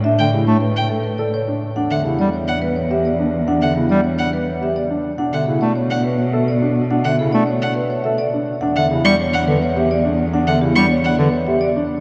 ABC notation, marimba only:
X:1
M:3/4
L:1/16
Q:1/4=105
K:Edor
V:1 name="Marimba"
e d G c B z A B d c z2 | f e G d c d B c e d z2 | f e G d c d B c e d z2 | f e A d c d B c e d z2 |
f e A d c d B c e d z2 | f e G d c d B c e d z2 | f e G d c d B c e d z2 |]